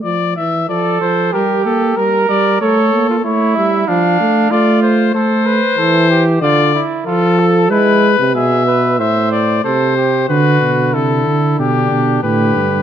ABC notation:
X:1
M:4/4
L:1/16
Q:1/4=94
K:Dm
V:1 name="Trumpet"
d2 e2 d2 c2 B2 A2 B2 d2 | A4 ^c2 e2 f4 d2 =c2 | c8 d2 z2 A4 | =B4 e4 e2 d2 c4 |
=B4 A4 G4 B4 |]
V:2 name="Flugelhorn"
z4 A4 G4 B4 | ^c3 F E4 D4 F4 | A2 =B2 A2 G2 F2 E2 F2 A2 | E3 z ^G2 =B2 c4 A2 =G2 |
^F4 E4 D4 G4 |]
V:3 name="Euphonium" clef=bass
F,2 E,2 F,2 F,2 G,2 B,2 G,2 G,2 | A,2 B,2 A,2 G,2 F,2 A,2 A,4 | A,4 E,4 D,3 z F,4 | ^G,3 C, =B,,4 A,,4 C,4 |
D,12 D,4 |]
V:4 name="Tuba" clef=bass
z16 | z16 | z16 | z16 |
D,2 =B,,2 C,2 D,2 B,,2 B,,2 A,,2 G,,2 |]